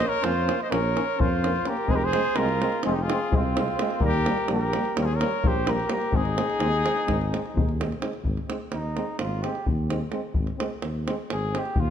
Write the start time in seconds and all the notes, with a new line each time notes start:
Already playing: C5
0.00 A#3, davul high
0.06 A#4 C#5
0.21 F2 A#3 C#4 F4 C5, davul high
0.36 davul high
0.46 A#3 C#4, davul high
0.61 C5 D#5, davul high
0.70 A#1 A#3 C#4 A#4 C#5, davul high
0.95 A#3 C#4, davul high
1.18 F2 A#3 C#4 F4 C5, davul low
1.43 A#3 C#4, davul high
1.56 davul high
1.65 A#3 C#4 A#4, davul high
1.69 G4
1.77 davul high
1.87 F1 G#3 C4 G#4, davul low
1.91 G4 C5
1.96 A#4
2.02 C5, davul high
2.06 G#4
2.13 G#3 C4, davul high
2.25 davul high
2.36 C2 G#3 C4 F4 A#4, davul high
2.49 davul high
2.61 G#3 C4, davul high
2.72 davul high
2.83 F1 G#3 C4 F4 G#4, davul high
2.90 D#4 G4
3.02 F4 G#4
3.08 G#3 C4, davul high
3.31 C2 G#3 C4, davul low
3.35 C4 F4
3.54 G#3 C4, davul high
3.68 davul high
3.77 G#3 C4, davul high
3.90 davul high
3.99 D#2 G3 A#3, davul low
4.04 G4 A#4
4.14 davul high
4.25 G3 A#3, davul high
4.37 davul high
4.47 A#1 G3 A#3, davul high
4.52 G4 A#4
4.61 davul high
4.73 G3 A#3, davul high
4.85 davul high
4.96 D#2 G3 A#3 C#5, davul high
5.01 G#4 A#4 C5
5.13 A#4 C#5
5.20 G3 A#3, davul high
5.43 A#1 G3 A#3, davul low
5.47 G4 C5
5.67 G3 A#3 A#4, davul high
5.73 G4
5.80 davul high
5.90 G3 A#3 A#4, davul high
5.96 G4
6.01 davul high
6.11 G#1 G#3 C4 G#4, davul low
6.17 D#4
6.25 davul high
6.36 G#3 C4, davul high
6.50 davul high
6.59 D#2 G#3 C4, davul high
6.73 davul high
6.84 G#3 C4, davul high
6.97 davul high
7.06 G#1 G#3 C4, davul high, davul low
7.21 davul high
7.31 G#3 C4, davul high
7.46 davul high
7.54 D#2 G#3 C4, davul low
7.69 davul high
7.79 G#3 C4, davul high
7.92 davul high
8.00 G#3 C4, davul high
8.13 davul high
8.23 G#1, davul low
8.37 davul high
8.48 G#3 C4, davul high
8.72 D#2 D#4, davul high
8.95 G#3 C4, davul high
9.18 G#1 F4, davul high
9.42 G#3 C4 G4, davul high
9.55 davul high
9.66 D#2, davul low
9.90 G#3 C4, davul high
10.11 G#3 C4, davul high
10.34 G#1, davul low
10.47 davul high
10.58 G#3 C4, davul high
10.82 D#2, davul high
11.06 G#3 C4, davul high
11.30 G#1 G#4, davul high
11.53 G#3 C4, davul high
11.58 G4
11.65 davul high
11.76 D#2, davul low
11.80 F4